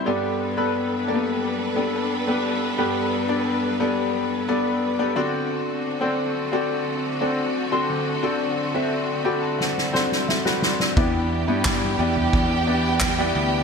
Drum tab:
RD |----------------|----------------|----------------|----------------|
CP |----------------|----------------|----------------|----------------|
SD |----------------|----------------|----------------|--------oooooooo|
FT |----------------|----------------|----------------|----------------|
BD |----------------|----------------|----------------|----------------|

RD |x-x---xxx-xxx-x-|
CP |----x-------x---|
SD |----o-------o---|
FT |-------o--------|
BD |o---o---o---o---|